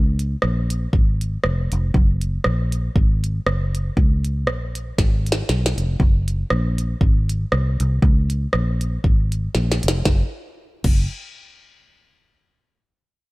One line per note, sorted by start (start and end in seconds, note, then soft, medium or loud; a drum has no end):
0.00 0.35 C#2 loud
0.19 closed hi-hat medium
0.42 0.86 A#1 loud
0.42 cross-stick loud
0.70 closed hi-hat loud
0.93 1.36 G#1 loud
0.93 kick loud
1.21 closed hi-hat medium
1.44 1.68 F1 medium
1.44 cross-stick loud
1.72 1.91 F1 loud
1.72 closed hi-hat loud
1.94 2.38 F#1 loud
1.94 kick loud
2.21 closed hi-hat loud
2.44 2.88 A#1 medium
2.44 cross-stick loud
2.72 closed hi-hat loud
2.96 3.39 G#1 loud
2.96 kick loud
3.24 closed hi-hat medium
3.46 3.89 F#1 medium
3.46 cross-stick loud
3.75 closed hi-hat loud
3.97 4.48 C#2 loud
3.97 kick loud
4.25 closed hi-hat medium
4.47 4.91 A#1 medium
4.47 cross-stick loud
4.75 closed hi-hat loud
4.98 5.41 G#1 loud
4.98 kick loud
4.98 snare medium
5.26 closed hi-hat medium
5.32 snare medium
5.49 5.73 B1 medium
5.49 snare medium
5.66 snare medium
5.77 5.97 F1 medium
5.77 closed hi-hat loud
6.00 6.43 F#1 loud
6.00 kick loud
6.28 closed hi-hat loud
6.50 6.94 A#1 medium
6.50 cross-stick loud
6.78 closed hi-hat loud
7.01 7.44 G#1 loud
7.01 kick loud
7.29 closed hi-hat medium
7.52 7.76 C2 medium
7.52 cross-stick loud
7.80 7.99 C2 medium
7.80 closed hi-hat loud
8.02 8.46 C#2 loud
8.02 kick loud
8.30 closed hi-hat loud
8.53 8.97 A#1 loud
8.53 cross-stick loud
8.81 closed hi-hat loud
9.04 9.47 G#1 loud
9.04 kick loud
9.32 closed hi-hat medium
9.55 9.79 A#1 medium
9.55 snare medium
9.72 snare medium
9.83 10.03 F1 medium
9.83 closed hi-hat loud
9.88 snare loud
10.05 10.21 F#1 loud
10.05 kick loud
10.05 snare medium
10.84 11.06 F#1 loud
10.84 kick loud
10.84 crash medium